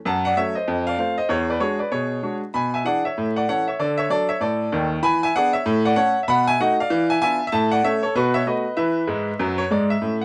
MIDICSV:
0, 0, Header, 1, 2, 480
1, 0, Start_track
1, 0, Tempo, 311042
1, 90, Time_signature, 4, 2, 24, 8
1, 15816, End_track
2, 0, Start_track
2, 0, Title_t, "Upright piano"
2, 0, Program_c, 0, 0
2, 84, Note_on_c, 0, 42, 87
2, 95, Note_on_c, 0, 81, 95
2, 108, Note_on_c, 0, 78, 72
2, 344, Note_off_c, 0, 81, 0
2, 363, Note_off_c, 0, 78, 0
2, 386, Note_on_c, 0, 78, 93
2, 411, Note_on_c, 0, 74, 61
2, 494, Note_off_c, 0, 42, 0
2, 543, Note_off_c, 0, 78, 0
2, 569, Note_on_c, 0, 54, 48
2, 570, Note_off_c, 0, 74, 0
2, 571, Note_on_c, 0, 57, 47
2, 573, Note_on_c, 0, 76, 91
2, 585, Note_on_c, 0, 61, 52
2, 598, Note_on_c, 0, 73, 65
2, 822, Note_off_c, 0, 76, 0
2, 833, Note_off_c, 0, 54, 0
2, 835, Note_off_c, 0, 57, 0
2, 844, Note_off_c, 0, 61, 0
2, 854, Note_on_c, 0, 75, 72
2, 859, Note_off_c, 0, 73, 0
2, 878, Note_on_c, 0, 72, 58
2, 1043, Note_on_c, 0, 41, 89
2, 1266, Note_off_c, 0, 75, 0
2, 1318, Note_off_c, 0, 72, 0
2, 1338, Note_on_c, 0, 77, 94
2, 1364, Note_on_c, 0, 74, 58
2, 1453, Note_off_c, 0, 41, 0
2, 1498, Note_off_c, 0, 77, 0
2, 1512, Note_on_c, 0, 57, 47
2, 1521, Note_on_c, 0, 77, 82
2, 1527, Note_off_c, 0, 74, 0
2, 1529, Note_on_c, 0, 65, 50
2, 1530, Note_on_c, 0, 60, 50
2, 1540, Note_on_c, 0, 72, 59
2, 1775, Note_off_c, 0, 77, 0
2, 1780, Note_off_c, 0, 57, 0
2, 1793, Note_off_c, 0, 60, 0
2, 1793, Note_off_c, 0, 65, 0
2, 1808, Note_off_c, 0, 72, 0
2, 1816, Note_on_c, 0, 75, 82
2, 1831, Note_on_c, 0, 72, 64
2, 1976, Note_off_c, 0, 75, 0
2, 1988, Note_on_c, 0, 40, 86
2, 1999, Note_off_c, 0, 72, 0
2, 2001, Note_on_c, 0, 73, 91
2, 2018, Note_on_c, 0, 68, 62
2, 2255, Note_off_c, 0, 73, 0
2, 2288, Note_off_c, 0, 68, 0
2, 2310, Note_on_c, 0, 74, 75
2, 2323, Note_on_c, 0, 71, 67
2, 2405, Note_off_c, 0, 40, 0
2, 2464, Note_off_c, 0, 74, 0
2, 2468, Note_on_c, 0, 56, 50
2, 2473, Note_on_c, 0, 73, 84
2, 2477, Note_on_c, 0, 62, 47
2, 2479, Note_on_c, 0, 66, 62
2, 2486, Note_off_c, 0, 71, 0
2, 2491, Note_on_c, 0, 68, 67
2, 2730, Note_off_c, 0, 73, 0
2, 2737, Note_off_c, 0, 56, 0
2, 2744, Note_off_c, 0, 62, 0
2, 2746, Note_off_c, 0, 66, 0
2, 2764, Note_off_c, 0, 68, 0
2, 2765, Note_on_c, 0, 74, 67
2, 2788, Note_on_c, 0, 71, 58
2, 2929, Note_off_c, 0, 74, 0
2, 2957, Note_off_c, 0, 71, 0
2, 2958, Note_on_c, 0, 73, 80
2, 2959, Note_on_c, 0, 47, 75
2, 2970, Note_on_c, 0, 68, 55
2, 3370, Note_off_c, 0, 47, 0
2, 3438, Note_on_c, 0, 56, 43
2, 3440, Note_on_c, 0, 62, 50
2, 3451, Note_on_c, 0, 66, 49
2, 3621, Note_off_c, 0, 73, 0
2, 3689, Note_off_c, 0, 68, 0
2, 3705, Note_off_c, 0, 56, 0
2, 3706, Note_off_c, 0, 62, 0
2, 3714, Note_off_c, 0, 66, 0
2, 3917, Note_on_c, 0, 83, 88
2, 3921, Note_on_c, 0, 47, 72
2, 3943, Note_on_c, 0, 80, 72
2, 4172, Note_off_c, 0, 83, 0
2, 4202, Note_off_c, 0, 80, 0
2, 4225, Note_on_c, 0, 80, 74
2, 4242, Note_on_c, 0, 76, 67
2, 4331, Note_off_c, 0, 47, 0
2, 4381, Note_off_c, 0, 80, 0
2, 4392, Note_on_c, 0, 52, 50
2, 4401, Note_on_c, 0, 62, 50
2, 4404, Note_off_c, 0, 76, 0
2, 4407, Note_on_c, 0, 78, 91
2, 4413, Note_on_c, 0, 68, 53
2, 4421, Note_on_c, 0, 74, 66
2, 4658, Note_off_c, 0, 78, 0
2, 4660, Note_off_c, 0, 52, 0
2, 4667, Note_off_c, 0, 62, 0
2, 4675, Note_off_c, 0, 68, 0
2, 4689, Note_off_c, 0, 74, 0
2, 4707, Note_on_c, 0, 76, 80
2, 4726, Note_on_c, 0, 73, 49
2, 4900, Note_on_c, 0, 45, 80
2, 5113, Note_off_c, 0, 76, 0
2, 5161, Note_off_c, 0, 73, 0
2, 5191, Note_on_c, 0, 78, 79
2, 5206, Note_on_c, 0, 74, 66
2, 5302, Note_off_c, 0, 45, 0
2, 5344, Note_off_c, 0, 78, 0
2, 5366, Note_off_c, 0, 74, 0
2, 5384, Note_on_c, 0, 61, 44
2, 5385, Note_on_c, 0, 52, 52
2, 5386, Note_on_c, 0, 78, 95
2, 5396, Note_on_c, 0, 69, 53
2, 5397, Note_on_c, 0, 73, 64
2, 5629, Note_off_c, 0, 78, 0
2, 5643, Note_off_c, 0, 61, 0
2, 5644, Note_off_c, 0, 52, 0
2, 5652, Note_off_c, 0, 69, 0
2, 5658, Note_off_c, 0, 73, 0
2, 5673, Note_on_c, 0, 76, 68
2, 5690, Note_on_c, 0, 73, 58
2, 5825, Note_off_c, 0, 76, 0
2, 5848, Note_off_c, 0, 73, 0
2, 5853, Note_on_c, 0, 50, 83
2, 5860, Note_on_c, 0, 74, 85
2, 5880, Note_on_c, 0, 69, 65
2, 6105, Note_off_c, 0, 74, 0
2, 6136, Note_on_c, 0, 76, 92
2, 6139, Note_off_c, 0, 69, 0
2, 6155, Note_on_c, 0, 73, 73
2, 6258, Note_off_c, 0, 50, 0
2, 6295, Note_off_c, 0, 76, 0
2, 6321, Note_off_c, 0, 73, 0
2, 6325, Note_on_c, 0, 54, 48
2, 6334, Note_on_c, 0, 62, 55
2, 6334, Note_on_c, 0, 74, 102
2, 6354, Note_on_c, 0, 69, 72
2, 6582, Note_off_c, 0, 74, 0
2, 6589, Note_off_c, 0, 54, 0
2, 6595, Note_off_c, 0, 62, 0
2, 6616, Note_off_c, 0, 69, 0
2, 6616, Note_on_c, 0, 76, 84
2, 6631, Note_on_c, 0, 73, 60
2, 6775, Note_off_c, 0, 76, 0
2, 6795, Note_on_c, 0, 45, 71
2, 6798, Note_off_c, 0, 73, 0
2, 6807, Note_on_c, 0, 74, 85
2, 6827, Note_on_c, 0, 69, 76
2, 7208, Note_off_c, 0, 45, 0
2, 7288, Note_on_c, 0, 51, 83
2, 7289, Note_on_c, 0, 39, 83
2, 7466, Note_off_c, 0, 74, 0
2, 7538, Note_off_c, 0, 69, 0
2, 7671, Note_off_c, 0, 51, 0
2, 7672, Note_off_c, 0, 39, 0
2, 7756, Note_on_c, 0, 52, 83
2, 7759, Note_on_c, 0, 83, 118
2, 7778, Note_on_c, 0, 80, 92
2, 8013, Note_off_c, 0, 83, 0
2, 8047, Note_off_c, 0, 80, 0
2, 8074, Note_on_c, 0, 80, 106
2, 8097, Note_on_c, 0, 76, 75
2, 8168, Note_off_c, 0, 52, 0
2, 8226, Note_off_c, 0, 80, 0
2, 8252, Note_off_c, 0, 76, 0
2, 8261, Note_on_c, 0, 62, 57
2, 8267, Note_on_c, 0, 78, 110
2, 8268, Note_on_c, 0, 59, 62
2, 8278, Note_on_c, 0, 68, 72
2, 8285, Note_on_c, 0, 74, 80
2, 8510, Note_off_c, 0, 78, 0
2, 8521, Note_off_c, 0, 62, 0
2, 8526, Note_off_c, 0, 59, 0
2, 8534, Note_off_c, 0, 68, 0
2, 8538, Note_on_c, 0, 76, 95
2, 8542, Note_off_c, 0, 74, 0
2, 8554, Note_on_c, 0, 73, 56
2, 8729, Note_on_c, 0, 45, 111
2, 8948, Note_off_c, 0, 76, 0
2, 8995, Note_off_c, 0, 73, 0
2, 9034, Note_on_c, 0, 78, 91
2, 9046, Note_on_c, 0, 74, 81
2, 9136, Note_off_c, 0, 45, 0
2, 9177, Note_off_c, 0, 78, 0
2, 9189, Note_on_c, 0, 57, 54
2, 9199, Note_on_c, 0, 61, 54
2, 9200, Note_on_c, 0, 78, 105
2, 9207, Note_off_c, 0, 74, 0
2, 9207, Note_on_c, 0, 69, 64
2, 9218, Note_on_c, 0, 73, 75
2, 9458, Note_off_c, 0, 57, 0
2, 9466, Note_off_c, 0, 61, 0
2, 9471, Note_off_c, 0, 69, 0
2, 9533, Note_off_c, 0, 78, 0
2, 9573, Note_off_c, 0, 73, 0
2, 9613, Note_on_c, 0, 76, 69
2, 9688, Note_on_c, 0, 47, 87
2, 9690, Note_on_c, 0, 83, 122
2, 9696, Note_off_c, 0, 76, 0
2, 9719, Note_on_c, 0, 78, 94
2, 9940, Note_off_c, 0, 83, 0
2, 9979, Note_off_c, 0, 78, 0
2, 9991, Note_on_c, 0, 80, 122
2, 10011, Note_on_c, 0, 76, 78
2, 10096, Note_off_c, 0, 47, 0
2, 10145, Note_off_c, 0, 80, 0
2, 10170, Note_off_c, 0, 76, 0
2, 10185, Note_on_c, 0, 57, 60
2, 10193, Note_on_c, 0, 78, 96
2, 10194, Note_on_c, 0, 66, 68
2, 10196, Note_on_c, 0, 63, 56
2, 10209, Note_on_c, 0, 75, 76
2, 10433, Note_off_c, 0, 78, 0
2, 10444, Note_off_c, 0, 57, 0
2, 10451, Note_off_c, 0, 66, 0
2, 10452, Note_off_c, 0, 63, 0
2, 10465, Note_off_c, 0, 75, 0
2, 10497, Note_on_c, 0, 77, 94
2, 10508, Note_on_c, 0, 74, 66
2, 10652, Note_on_c, 0, 52, 105
2, 10891, Note_off_c, 0, 77, 0
2, 10934, Note_off_c, 0, 74, 0
2, 10956, Note_on_c, 0, 80, 100
2, 10978, Note_on_c, 0, 76, 74
2, 11059, Note_off_c, 0, 52, 0
2, 11107, Note_off_c, 0, 80, 0
2, 11133, Note_off_c, 0, 76, 0
2, 11135, Note_on_c, 0, 59, 54
2, 11137, Note_on_c, 0, 80, 116
2, 11141, Note_on_c, 0, 62, 55
2, 11145, Note_on_c, 0, 65, 63
2, 11161, Note_on_c, 0, 76, 91
2, 11397, Note_off_c, 0, 59, 0
2, 11401, Note_off_c, 0, 62, 0
2, 11405, Note_off_c, 0, 65, 0
2, 11463, Note_off_c, 0, 80, 0
2, 11506, Note_off_c, 0, 76, 0
2, 11530, Note_on_c, 0, 76, 91
2, 11609, Note_on_c, 0, 81, 116
2, 11611, Note_off_c, 0, 76, 0
2, 11611, Note_on_c, 0, 45, 100
2, 11635, Note_on_c, 0, 76, 77
2, 11860, Note_off_c, 0, 81, 0
2, 11897, Note_off_c, 0, 76, 0
2, 11906, Note_on_c, 0, 78, 102
2, 11923, Note_on_c, 0, 74, 70
2, 12018, Note_off_c, 0, 45, 0
2, 12062, Note_off_c, 0, 78, 0
2, 12086, Note_off_c, 0, 74, 0
2, 12088, Note_on_c, 0, 57, 70
2, 12106, Note_on_c, 0, 76, 100
2, 12109, Note_on_c, 0, 61, 50
2, 12111, Note_on_c, 0, 69, 59
2, 12118, Note_on_c, 0, 73, 72
2, 12349, Note_off_c, 0, 76, 0
2, 12352, Note_off_c, 0, 57, 0
2, 12364, Note_off_c, 0, 73, 0
2, 12368, Note_off_c, 0, 61, 0
2, 12369, Note_off_c, 0, 69, 0
2, 12387, Note_on_c, 0, 73, 85
2, 12413, Note_on_c, 0, 69, 72
2, 12543, Note_off_c, 0, 73, 0
2, 12571, Note_off_c, 0, 69, 0
2, 12581, Note_on_c, 0, 47, 96
2, 12586, Note_on_c, 0, 71, 102
2, 12607, Note_on_c, 0, 66, 84
2, 12829, Note_off_c, 0, 71, 0
2, 12863, Note_off_c, 0, 66, 0
2, 12872, Note_on_c, 0, 76, 101
2, 12893, Note_on_c, 0, 73, 73
2, 12984, Note_off_c, 0, 47, 0
2, 13025, Note_off_c, 0, 76, 0
2, 13051, Note_off_c, 0, 73, 0
2, 13060, Note_on_c, 0, 57, 53
2, 13067, Note_on_c, 0, 59, 50
2, 13068, Note_on_c, 0, 75, 77
2, 13072, Note_on_c, 0, 66, 59
2, 13081, Note_on_c, 0, 71, 68
2, 13321, Note_off_c, 0, 57, 0
2, 13326, Note_off_c, 0, 59, 0
2, 13330, Note_off_c, 0, 66, 0
2, 13468, Note_off_c, 0, 75, 0
2, 13512, Note_off_c, 0, 71, 0
2, 13529, Note_on_c, 0, 76, 85
2, 13536, Note_on_c, 0, 52, 85
2, 13558, Note_on_c, 0, 71, 69
2, 13940, Note_off_c, 0, 52, 0
2, 14005, Note_on_c, 0, 44, 79
2, 14005, Note_on_c, 0, 56, 75
2, 14366, Note_off_c, 0, 44, 0
2, 14366, Note_off_c, 0, 56, 0
2, 14498, Note_on_c, 0, 54, 83
2, 14499, Note_on_c, 0, 42, 81
2, 14752, Note_off_c, 0, 76, 0
2, 14783, Note_on_c, 0, 73, 90
2, 14854, Note_off_c, 0, 42, 0
2, 14854, Note_off_c, 0, 54, 0
2, 14921, Note_off_c, 0, 71, 0
2, 14940, Note_off_c, 0, 73, 0
2, 14978, Note_on_c, 0, 56, 70
2, 14989, Note_on_c, 0, 44, 73
2, 14992, Note_on_c, 0, 74, 85
2, 15233, Note_off_c, 0, 74, 0
2, 15281, Note_on_c, 0, 76, 83
2, 15334, Note_off_c, 0, 56, 0
2, 15340, Note_off_c, 0, 44, 0
2, 15455, Note_on_c, 0, 45, 76
2, 15481, Note_on_c, 0, 61, 39
2, 15681, Note_off_c, 0, 76, 0
2, 15736, Note_off_c, 0, 61, 0
2, 15762, Note_on_c, 0, 78, 79
2, 15816, Note_off_c, 0, 45, 0
2, 15816, Note_off_c, 0, 78, 0
2, 15816, End_track
0, 0, End_of_file